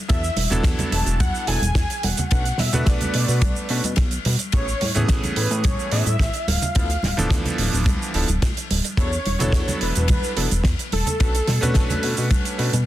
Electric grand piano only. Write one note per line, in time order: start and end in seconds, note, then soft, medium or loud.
0.08 0.20 F#3 medium
0.08 0.20 B3 medium
0.08 0.20 D4 medium
0.08 0.21 E4 medium
0.08 0.21 A4 medium
0.50 1.44 F#3 loud
0.50 1.45 B3 loud
0.50 1.45 D4 loud
0.50 1.45 E4 loud
0.50 1.45 A4 loud
1.47 1.59 F#3 medium
1.47 1.59 B3 medium
1.47 1.59 D4 medium
1.47 1.59 E4 medium
1.47 1.59 A4 medium
2.31 2.43 A3 medium
2.31 2.43 C#4 medium
2.31 2.43 D4 medium
2.31 2.43 F#4 medium
2.31 2.43 B4 medium
2.73 3.67 A3 loud
2.73 3.67 B3 medium
2.73 3.67 D4 loud
2.73 3.67 F#4 medium
2.73 3.68 B4 loud
3.70 3.82 A3 medium
3.70 3.82 C#4 medium
3.70 3.82 D4 medium
3.70 3.82 F#4 medium
3.70 3.82 B4 medium
4.53 4.65 E3 medium
4.53 4.65 A3 medium
4.53 4.65 B3 medium
4.53 4.65 C#4 medium
4.53 4.65 G#4 medium
4.95 5.89 E3 loud
4.95 5.89 A3 loud
4.95 5.89 B3 loud
4.95 5.90 C#4 medium
4.95 5.90 G#4 loud
5.92 6.04 E3 medium
5.92 6.04 A3 medium
5.92 6.04 B3 medium
5.92 6.04 C#4 medium
5.92 6.04 G#4 medium
6.75 6.87 F3 medium
6.75 6.87 B3 medium
6.75 6.87 D4 medium
6.75 6.87 E4 medium
6.75 6.88 A4 medium
7.17 8.12 E3 loud
7.17 8.11 F3 loud
7.17 8.11 B3 loud
7.17 8.12 D4 loud
7.17 8.12 A4 loud
8.14 8.26 F3 medium
8.14 8.26 B3 medium
8.14 8.26 D4 medium
8.14 8.27 E4 medium
8.14 8.27 A4 medium
8.98 9.09 F#3 medium
8.98 9.10 B3 medium
8.98 9.10 D4 medium
8.98 9.10 E4 medium
8.98 9.10 A4 medium
9.39 10.33 F#3 loud
9.39 10.33 B3 loud
9.39 10.34 D4 loud
9.39 10.34 E4 loud
9.39 10.34 A4 loud
10.36 10.48 F#3 medium
10.36 10.48 B3 medium
10.36 10.48 D4 medium
10.36 10.48 E4 medium
10.36 10.49 A4 medium
11.20 11.32 A3 medium
11.20 11.32 C#4 medium
11.20 11.32 D4 medium
11.20 11.32 F#4 medium
11.20 11.32 B4 medium
11.61 12.55 A3 loud
11.61 12.55 C#4 loud
11.61 12.56 D4 loud
11.61 12.56 F#4 loud
11.61 12.56 B4 loud
12.58 12.70 A3 medium
12.58 12.70 C#4 medium
12.58 12.70 D4 medium
12.58 12.70 F#4 medium
12.58 12.71 B4 medium